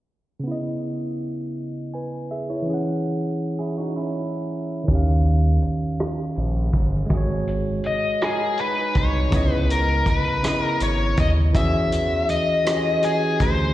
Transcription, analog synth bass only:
4.89 D#2
5.63 A#1
6.37 A#1
6.74 G1
7.11 G#1
7.85 C2
8.96 C2
9.32 C#2
10.07 G#1
10.81 G#1
11.18 D#2
11.55 E2
12.29 D2
13.41 D2

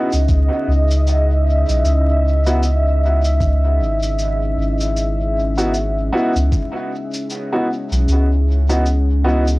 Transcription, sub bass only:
0.13 C#2
0.29 C#2
0.68 C#2
1.69 B1
1.84 C#2
3.79 G#1
4.57 G#1
6.35 C#2
7.91 B1
8.08 C#2

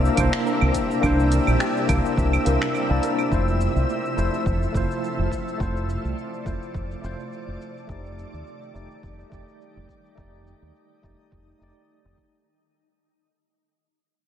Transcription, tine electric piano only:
Already playing: A#3 D4 E4 C5
0.15 A#3 D4 E4
0.20 C5
1.01 A#3 D4 E4
1.06 C5
1.87 A#3 D4 E4 C5
2.45 A#3 D4 E4 C5
2.89 A#3 D4 E4 D5
3.29 A3 E4 F4
3.34 C5
4.16 A3 E4 F4 C5
4.72 A3 E4 F4
4.77 C5
5.58 A3 E4 F4
5.63 C5
6.45 A3 E4 F4 C5
7.01 A3 E4 F4
7.06 C5
7.87 A3 D#4 G4
7.92 D5
8.74 A3 D#4 G4 D5
9.30 A3 D#4 G4
9.35 D5
10.15 A3 D#4 G4
10.20 D5
11.03 A3 D#4 G4 D5
11.58 A3 D#4 G4
11.63 D5

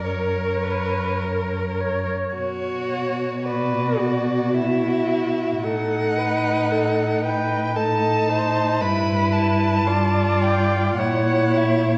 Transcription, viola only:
0.04 A#4
0.63 B4
1.23 A#4
1.81 C#5
3.46 B4
4.01 F#4
5.64 A4
6.18 B4
6.72 A4
7.24 B4
7.76 A4
8.29 C5
8.81 B4
9.87 D5
10.99 C#5

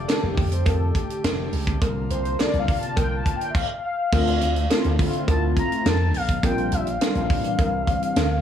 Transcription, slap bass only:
0.23 F1
0.37 F2
0.66 F2
1.24 F1
1.52 C#2
1.81 C2
2.10 C2
2.54 C2
2.68 C3
2.97 C2
4.13 D2
4.41 D2
4.85 D2
4.99 D3
5.28 D2
5.85 F2
6.14 B1
6.43 A#1
6.72 A#1
7.15 A#1
7.30 A#2
7.59 C2
8.16 D2

